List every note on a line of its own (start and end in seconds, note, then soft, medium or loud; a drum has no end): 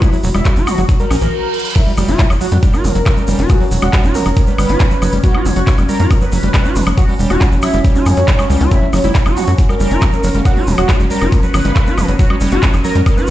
0.00 0.11 E3 loud
0.00 1.32 F#3 medium
0.00 0.18 E4 loud
0.00 1.35 F#4 medium
0.00 kick loud
0.00 closed hi-hat medium
0.00 shaker soft
0.13 0.16 F#3 loud
0.13 open hi-hat medium
0.13 shaker soft
0.24 0.31 E1 medium
0.24 0.29 F#3 medium
0.24 open hi-hat loud
0.24 shaker medium
0.34 0.42 E1 medium
0.34 0.40 G3 medium
0.34 0.50 E4 loud
0.34 closed hi-hat soft
0.34 high woodblock soft
0.34 shaker soft
0.45 0.58 G3 medium
0.45 kick loud
0.45 clap loud
0.45 closed hi-hat medium
0.45 shaker medium
0.56 0.63 F#1 medium
0.56 0.69 F#4 loud
0.56 closed hi-hat soft
0.56 shaker soft
0.67 0.76 E3 loud
0.67 0.83 F#4 loud
0.67 open hi-hat loud
0.67 high woodblock medium
0.67 shaker medium
0.78 0.85 F#1 medium
0.78 0.81 F#3 loud
0.78 closed hi-hat soft
0.78 shaker soft
0.89 0.95 F#3 medium
0.89 kick loud
0.89 closed hi-hat medium
0.89 reverse cymbal medium
0.89 shaker soft
1.00 1.05 G3 medium
1.00 1.67 A#4 loud
1.00 closed hi-hat soft
1.00 shaker soft
1.11 1.18 A#1 medium
1.11 1.16 C#4 medium
1.11 open hi-hat loud
1.11 high woodblock soft
1.11 shaker medium
1.21 1.29 A#1 medium
1.21 1.27 E3 medium
1.21 closed hi-hat soft
1.21 shaker soft
1.54 closed hi-hat medium
1.59 closed hi-hat medium
1.65 closed hi-hat medium
1.70 closed hi-hat medium
1.76 1.82 F#3 medium
1.76 13.30 F#3 medium
1.76 1.87 A#3 medium
1.76 8.70 C#4 medium
1.76 1.92 E4 loud
1.76 kick loud
1.76 closed hi-hat medium
1.76 crash loud
1.76 shaker medium
1.87 1.92 G3 medium
1.97 2.05 F#1 loud
1.97 2.04 F#3 medium
1.97 2.10 G3 medium
1.97 open hi-hat loud
1.97 high woodblock soft
1.97 shaker medium
2.08 2.16 F#1 medium
2.08 2.15 F#3 medium
2.08 2.24 E4 loud
2.08 2.21 F#4 loud
2.08 closed hi-hat medium
2.08 shaker soft
2.19 2.28 E3 loud
2.19 kick loud
2.19 clap loud
2.19 closed hi-hat medium
2.19 shaker medium
2.30 2.37 F#1 medium
2.30 2.34 F#3 loud
2.30 closed hi-hat soft
2.30 high woodblock medium
2.30 shaker soft
2.41 2.47 F#3 medium
2.41 2.57 F#4 medium
2.41 open hi-hat loud
2.41 shaker medium
2.51 2.59 F#2 medium
2.51 2.58 G3 medium
2.51 closed hi-hat medium
2.51 shaker soft
2.63 2.75 G3 medium
2.63 kick loud
2.63 closed hi-hat medium
2.63 shaker medium
2.73 2.86 F#4 loud
2.73 3.41 A#4 loud
2.73 high woodblock soft
2.73 shaker soft
2.84 2.92 F#1 medium
2.84 2.93 E3 loud
2.84 open hi-hat loud
2.84 shaker medium
2.95 3.02 F#1 medium
2.95 2.99 F#3 loud
2.95 closed hi-hat medium
2.95 shaker soft
3.06 3.12 F#3 medium
3.06 kick loud
3.06 clap loud
3.06 closed hi-hat medium
3.06 high woodblock medium
3.06 shaker medium
3.17 3.23 G3 medium
3.17 shaker soft
3.28 3.35 F#1 medium
3.28 3.40 G3 medium
3.28 3.35 A#3 medium
3.28 open hi-hat loud
3.28 shaker medium
3.39 3.46 F#1 medium
3.39 3.46 A#3 medium
3.39 3.51 F#4 loud
3.39 closed hi-hat medium
3.39 shaker soft
3.49 3.58 E3 loud
3.49 3.57 A#3 medium
3.49 3.65 F#4 loud
3.49 kick loud
3.49 closed hi-hat medium
3.49 high woodblock soft
3.49 shaker medium
3.61 3.64 F#3 loud
3.61 3.68 A#3 medium
3.61 open hi-hat medium
3.71 3.79 E1 loud
3.71 3.77 F#3 medium
3.71 open hi-hat loud
3.71 shaker loud
3.82 3.89 E1 medium
3.82 3.88 G3 medium
3.82 3.98 F#4 loud
3.82 closed hi-hat medium
3.82 high woodblock medium
3.82 shaker soft
3.93 4.06 G3 medium
3.93 kick loud
3.93 clap loud
3.93 closed hi-hat medium
3.93 shaker medium
4.04 4.11 F#1 medium
4.04 4.16 F#4 loud
4.04 closed hi-hat soft
4.04 shaker soft
4.15 4.24 E3 loud
4.15 4.31 A#4 medium
4.15 open hi-hat loud
4.15 shaker loud
4.26 4.33 F#1 medium
4.26 4.29 F#3 loud
4.26 closed hi-hat medium
4.26 high woodblock soft
4.26 shaker soft
4.36 4.42 F#3 medium
4.36 kick loud
4.36 closed hi-hat medium
4.36 shaker medium
4.47 4.53 G3 medium
4.47 5.15 B4 loud
4.47 shaker soft
4.58 4.66 G1 medium
4.58 4.71 G3 medium
4.58 open hi-hat loud
4.58 high woodblock medium
4.58 shaker medium
4.69 4.76 G1 medium
4.69 4.82 F#4 loud
4.69 closed hi-hat medium
4.69 shaker soft
4.80 4.89 E3 loud
4.80 kick loud
4.80 clap loud
4.80 closed hi-hat medium
4.80 shaker medium
4.91 4.95 F#3 loud
4.91 shaker soft
5.02 5.09 F#1 loud
5.02 5.08 F#3 medium
5.02 open hi-hat loud
5.02 high woodblock soft
5.02 shaker medium
5.12 5.20 F#1 medium
5.12 5.19 G3 medium
5.12 closed hi-hat medium
5.12 shaker soft
5.24 5.36 G3 medium
5.24 5.39 F#4 loud
5.24 kick loud
5.24 closed hi-hat medium
5.24 shaker medium
5.35 5.47 F#4 loud
5.35 high woodblock medium
5.45 5.52 F#1 medium
5.45 5.54 E3 loud
5.45 open hi-hat loud
5.45 shaker loud
5.56 5.63 F#1 medium
5.56 5.60 F#3 loud
5.56 5.72 F#4 loud
5.56 closed hi-hat medium
5.56 shaker soft
5.67 5.73 F#3 medium
5.67 kick loud
5.67 clap loud
5.67 closed hi-hat medium
5.67 shaker medium
5.78 5.85 F#1 medium
5.78 5.84 G3 medium
5.78 closed hi-hat soft
5.78 high woodblock soft
5.78 shaker soft
5.89 6.01 G3 medium
5.89 6.05 A#4 medium
5.89 open hi-hat loud
5.89 shaker loud
6.00 6.07 F#2 medium
6.00 6.12 F#4 loud
6.00 closed hi-hat medium
6.00 shaker soft
6.11 6.19 E3 loud
6.11 kick loud
6.11 closed hi-hat medium
6.11 high woodblock medium
6.11 shaker medium
6.21 6.25 F#3 loud
6.21 6.89 B4 loud
6.21 shaker soft
6.32 6.39 F#1 medium
6.32 6.38 F#3 medium
6.32 open hi-hat loud
6.32 shaker loud
6.43 6.50 F#1 medium
6.43 6.49 G3 medium
6.43 closed hi-hat medium
6.43 shaker soft
6.54 6.66 G3 medium
6.54 kick loud
6.54 clap loud
6.54 closed hi-hat medium
6.54 high woodblock soft
6.54 shaker medium
6.65 6.77 F#4 loud
6.65 shaker soft
6.76 6.83 F#1 loud
6.76 6.84 E3 loud
6.76 open hi-hat loud
6.76 shaker loud
6.86 6.94 F#1 medium
6.86 6.90 F#3 loud
6.86 closed hi-hat medium
6.86 high woodblock medium
6.86 shaker soft
6.98 7.03 F#3 medium
6.98 7.13 F#4 loud
6.98 kick loud
6.98 closed hi-hat medium
6.98 shaker medium
7.08 7.14 G3 medium
7.08 open hi-hat medium
7.19 7.26 E1 medium
7.19 7.32 G3 medium
7.19 open hi-hat loud
7.19 shaker medium
7.30 7.37 E1 medium
7.30 7.43 F#4 loud
7.30 7.46 F#4 loud
7.30 closed hi-hat soft
7.30 high woodblock soft
7.30 shaker soft
7.41 7.50 E3 loud
7.41 kick loud
7.41 clap loud
7.41 closed hi-hat medium
7.41 shaker medium
7.52 7.59 F#1 medium
7.52 7.55 F#3 loud
7.52 closed hi-hat soft
7.52 shaker soft
7.62 7.69 F#3 medium
7.62 7.79 E4 medium
7.62 open hi-hat loud
7.62 high woodblock medium
7.62 shaker medium
7.73 7.81 F#1 medium
7.73 7.79 G3 medium
7.73 closed hi-hat medium
7.73 shaker soft
7.84 7.97 G3 medium
7.84 kick loud
7.84 closed hi-hat medium
7.84 shaker medium
7.95 8.63 C#4 loud
7.95 8.08 F#4 loud
7.95 shaker soft
8.06 8.13 F#2 loud
8.06 8.15 E3 loud
8.06 open hi-hat loud
8.06 high woodblock soft
8.06 shaker medium
8.17 8.24 F#2 medium
8.17 8.21 F#3 loud
8.17 closed hi-hat soft
8.17 shaker soft
8.28 8.34 F#3 medium
8.28 kick loud
8.28 clap loud
8.28 closed hi-hat medium
8.28 shaker medium
8.39 8.45 G3 medium
8.39 high woodblock medium
8.39 shaker soft
8.50 8.57 C#2 loud
8.50 8.62 G3 medium
8.50 open hi-hat loud
8.50 shaker medium
8.61 8.68 C#2 medium
8.61 8.73 F#4 loud
8.61 closed hi-hat medium
8.61 shaker soft
8.71 8.80 E3 loud
8.71 8.82 A#3 medium
8.71 13.30 C#4 medium
8.71 8.87 E4 loud
8.71 kick loud
8.71 closed hi-hat medium
8.71 shaker soft
8.82 8.86 F#3 loud
8.93 9.00 F#1 medium
8.93 9.00 F#3 medium
8.93 8.99 F#3 medium
8.93 open hi-hat loud
8.93 high woodblock soft
8.93 shaker medium
9.04 9.11 F#1 medium
9.04 9.11 F#3 medium
9.04 9.10 G3 medium
9.04 9.20 E4 loud
9.04 closed hi-hat soft
9.04 shaker soft
9.15 9.27 G3 medium
9.15 kick loud
9.15 clap loud
9.15 closed hi-hat medium
9.15 shaker medium
9.26 9.33 F#1 medium
9.26 9.38 F#4 loud
9.26 closed hi-hat soft
9.26 high woodblock medium
9.26 shaker soft
9.37 9.45 E3 loud
9.37 9.52 F#4 loud
9.37 open hi-hat loud
9.37 shaker medium
9.47 9.55 F#2 medium
9.47 9.51 F#3 loud
9.47 closed hi-hat medium
9.47 shaker soft
9.58 9.64 F#3 medium
9.58 kick loud
9.58 closed hi-hat medium
9.58 shaker medium
9.69 9.75 G3 medium
9.69 10.37 A#4 loud
9.69 high woodblock soft
9.69 shaker soft
9.80 9.87 F#1 medium
9.80 9.93 G3 medium
9.80 open hi-hat loud
9.80 shaker medium
9.91 9.98 F#1 medium
9.91 10.03 F#4 loud
9.91 closed hi-hat medium
9.91 shaker soft
10.01 10.11 E3 loud
10.01 kick loud
10.01 clap loud
10.01 closed hi-hat medium
10.01 high woodblock medium
10.01 shaker medium
10.13 10.16 F#3 loud
10.13 shaker soft
10.24 10.31 F#1 loud
10.24 10.29 F#3 medium
10.24 open hi-hat loud
10.24 shaker medium
10.34 10.42 F#1 medium
10.34 10.40 G3 medium
10.34 10.43 A#3 medium
10.34 closed hi-hat soft
10.34 shaker soft
10.45 10.52 F#3 medium
10.45 10.58 G3 medium
10.45 10.61 F#4 loud
10.45 kick loud
10.45 closed hi-hat medium
10.45 high woodblock soft
10.45 shaker soft
10.56 10.63 F#3 medium
10.56 10.69 F#4 loud
10.56 open hi-hat medium
10.67 10.74 E1 medium
10.67 10.76 E3 loud
10.67 open hi-hat loud
10.67 shaker medium
10.78 10.85 E1 medium
10.78 10.81 F#3 loud
10.78 10.94 F#4 loud
10.78 closed hi-hat medium
10.78 high woodblock medium
10.78 shaker soft
10.89 10.95 F#3 medium
10.89 kick loud
10.89 clap loud
10.89 closed hi-hat medium
10.89 shaker medium
11.00 11.07 F#1 medium
11.00 11.05 G3 medium
11.00 closed hi-hat soft
11.00 shaker soft
11.11 11.23 G3 medium
11.11 11.26 A#4 loud
11.11 open hi-hat loud
11.11 shaker medium
11.21 11.29 F#1 medium
11.21 11.34 F#4 loud
11.21 closed hi-hat medium
11.21 high woodblock soft
11.21 shaker soft
11.32 11.41 E3 loud
11.32 kick loud
11.32 closed hi-hat medium
11.32 shaker medium
11.43 11.47 F#3 loud
11.43 12.11 B4 loud
11.43 shaker soft
11.54 11.61 G1 loud
11.54 11.60 F#3 medium
11.54 open hi-hat loud
11.54 high woodblock medium
11.54 shaker medium
11.64 11.72 G1 medium
11.64 11.71 G3 medium
11.64 12.06 A#3 medium
11.64 closed hi-hat medium
11.64 shaker soft
11.76 11.88 G3 medium
11.76 kick loud
11.76 clap loud
11.76 closed hi-hat medium
11.76 shaker medium
11.87 11.99 F#4 loud
11.87 shaker soft
11.98 12.05 F#1 medium
11.98 12.06 E3 loud
11.98 open hi-hat loud
11.98 high woodblock soft
11.98 shaker medium
12.08 12.15 F#1 medium
12.08 12.15 F#3 medium
12.08 12.12 F#3 loud
12.08 closed hi-hat medium
12.08 shaker soft
12.19 12.25 F#3 medium
12.19 12.26 F#3 medium
12.19 12.35 F#4 loud
12.19 kick loud
12.19 closed hi-hat medium
12.19 shaker medium
12.30 12.36 G3 medium
12.30 high woodblock medium
12.41 12.48 F#1 loud
12.41 12.53 G3 medium
12.41 open hi-hat loud
12.41 shaker medium
12.52 12.59 F#1 medium
12.52 12.64 F#4 loud
12.52 12.68 F#4 loud
12.52 closed hi-hat medium
12.63 12.71 E3 loud
12.63 kick loud
12.63 clap loud
12.63 closed hi-hat medium
12.63 shaker soft
12.74 12.81 F#1 medium
12.74 12.77 F#3 loud
12.74 closed hi-hat soft
12.74 high woodblock soft
12.74 shaker soft
12.84 12.90 F#3 medium
12.84 13.00 A#4 loud
12.84 open hi-hat loud
12.84 shaker medium
12.95 13.02 F#2 medium
12.95 13.01 G3 medium
12.95 closed hi-hat medium
12.95 shaker soft
13.06 13.19 G3 medium
13.06 kick loud
13.06 closed hi-hat medium
13.06 high woodblock medium
13.06 shaker medium
13.17 13.29 F#4 loud
13.17 13.30 B4 loud
13.17 shaker soft
13.27 shaker medium